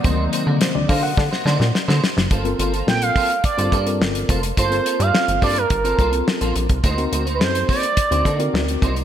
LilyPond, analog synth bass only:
\new Staff \with { instrumentName = "Analog synth bass" } { \clef bass \time 4/4 \key g \minor \tempo 4 = 106 d,8 r16 d16 r16 d,16 d8 d16 r16 d16 bes,16 r16 d16 r16 fis,,16 | g,,8 g,,8 bes,,8 r8. g,,16 g,8 g,,8 f,,8 | g,,8 r16 g,16 r16 g,,16 g,8 g,,8 c,8 r16 bes,,16 bes,,16 c,16 | d,8 d,8 fis,8 r8. d,16 d8 d,8 c,8 | }